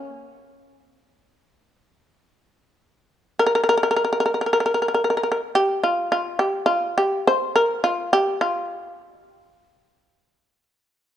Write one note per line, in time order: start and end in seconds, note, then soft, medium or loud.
0.00 0.87 C#4 medium
0.87 1.75 C4 medium
3.39 3.45 A#4 medium
3.46 3.54 A#4 medium
3.55 3.62 A#4 medium
3.64 3.68 A#4 medium
3.69 3.76 A#4 medium
3.77 3.82 A#4 medium
3.83 3.90 A#4 medium
3.91 3.95 A#4 medium
3.96 4.03 A#4 medium
4.05 4.11 A#4 medium
4.13 4.19 A#4 medium
4.20 4.24 A#4 medium
4.26 4.33 A#4 soft
4.34 4.40 A#4 soft
4.41 4.45 A#4 soft
4.46 4.52 A#4 soft
4.53 4.59 A#4 medium
4.60 4.65 A#4 medium
4.66 4.73 A#4 medium
4.74 4.81 A#4 soft
4.82 4.87 A#4 soft
4.88 4.93 A#4 soft
4.94 5.03 A#4 medium
5.04 5.09 A#4 medium
5.10 5.16 A#4 medium
5.17 5.22 A#4 soft
5.23 5.30 A#4 medium
5.32 5.40 A#4 medium
5.55 5.82 G4 medium
5.83 6.10 F4 medium
6.12 6.38 F4 medium
6.39 6.66 G4 medium
6.66 6.94 F4 medium
6.98 7.24 G4 medium
7.27 7.54 C5 medium
7.56 7.82 A#4 medium
7.84 8.10 F4 medium
8.13 8.38 G4 medium
8.41 10.63 F4 medium